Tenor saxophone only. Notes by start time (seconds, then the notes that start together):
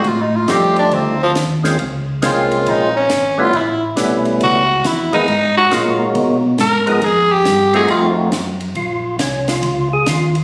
0.08 F4
0.21 D#4
0.36 F4
0.51 G4
0.79 D4
0.94 C4
1.23 F3
2.26 F4
2.69 D#4
2.97 C#4
3.40 F4
3.57 E4
4.44 F#4
4.87 E4
5.14 D#4
5.57 F#4
5.73 F4
6.61 A#4
7.04 G#4
7.32 G4
7.76 G#4
7.90 F4